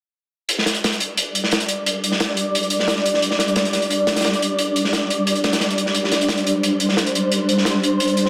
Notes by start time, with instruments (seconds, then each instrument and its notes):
0.49 synth drone G3 D4 D5, closed hi-hat
0.58 snare
0.66 snare, closed hi-hat
0.75 closed hi-hat
0.84 snare, closed hi-hat
0.92 closed hi-hat
1.00 closed hi-hat
1.17 closed hi-hat
1.35 closed hi-hat
1.44 snare
1.51 snare, closed hi-hat
1.60 closed hi-hat
1.68 closed hi-hat
1.86 closed hi-hat
2.04 closed hi-hat
2.12 snare
2.20 snare, closed hi-hat
2.37 closed hi-hat
2.55 closed hi-hat
2.63 closed hi-hat
2.70 closed hi-hat
2.79 snare
2.88 snare, closed hi-hat
2.96 snare
3.06 closed hi-hat
3.14 snare
3.22 closed hi-hat
3.31 snare
3.39 snare, closed hi-hat
3.48 closed hi-hat
3.56 snare, closed hi-hat
3.65 closed hi-hat
3.73 snare, closed hi-hat
3.82 closed hi-hat
3.90 closed hi-hat
4.07 snare, closed hi-hat
4.16 snare, closed hi-hat
4.21 snare, closed hi-hat
4.24 snare, closed hi-hat
4.33 closed hi-hat
4.42 closed hi-hat
4.59 closed hi-hat
4.76 closed hi-hat
4.84 snare
4.93 snare, closed hi-hat
5.10 closed hi-hat
5.27 closed hi-hat
5.35 closed hi-hat
5.44 snare, closed hi-hat
5.53 snare, closed hi-hat
5.60 snare, closed hi-hat
5.70 closed hi-hat
5.78 closed hi-hat
5.86 snare
5.95 synth drone C5, closed hi-hat
6.04 snare
6.12 snare, closed hi-hat
6.21 closed hi-hat
6.29 snare, closed hi-hat
6.37 closed hi-hat
6.47 closed hi-hat
6.63 closed hi-hat
6.80 closed hi-hat
6.89 snare
6.97 snare, closed hi-hat
7.06 closed hi-hat
7.15 closed hi-hat
7.32 closed hi-hat
7.49 closed hi-hat
7.58 snare
7.65 snare, closed hi-hat
7.83 closed hi-hat
8.00 closed hi-hat
8.08 closed hi-hat
8.17 closed hi-hat
8.26 snare